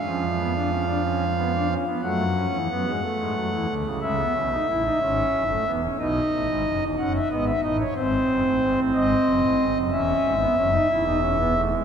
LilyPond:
<<
  \new Staff \with { instrumentName = "Pipe organ" } { \time 12/8 \key cis \phrygian \tempo 4. = 61 << { eis''2. fis''2. | e''2. dis''4. fis''16 e''16 dis''16 e''16 dis''16 cis''16 | bis'4. dis''4. e''2. | } \\ { cis'8 b16 d'16 cis'16 d'16 cis'8 b16 d'16 cis'16 b16 a8 cis'8 b8 r4. | gis16 b16 cis'16 dis'16 e'16 dis'16 cis'8. a16 b16 cis'16 dis'4. cis'8 b8 dis'8 | bis2. cis'8. b16 cis'16 dis'16 e'16 dis'16 cis'16 b16 a16 gis16 | } >> }
  \new Staff \with { instrumentName = "Pipe organ" } { \clef bass \time 12/8 \key cis \phrygian <eis, eis>2. <fis, fis>8. <e, e>16 <fis, fis>16 <gis, gis>16 a16 <gis, gis>16 <fis, fis>16 <e, e>16 <d, d>16 <cis, cis>16 | <cis, cis>8 <b,, b,>8 <a,, a,>8 <gis,, gis,>8 <fis,, fis,>8 <e,, e,>8 <b,, b,>8 <a,, a,>16 <gis,, gis,>16 <fis,, fis,>16 <e,, e,>16 <fis,, fis,>8 <gis,, gis,>8 <a,, a,>8 | <gis,, gis,>8 <fis,, fis,>16 <a,, a,>16 <gis,, gis,>16 <a,, a,>16 <gis,, gis,>8 <fis,, fis,>16 <a,, a,>16 <gis,, gis,>16 <fis,, fis,>16 <e,, e,>8 <gis,, gis,>8 <fis,, fis,>8 <e,, e,>4. | }
>>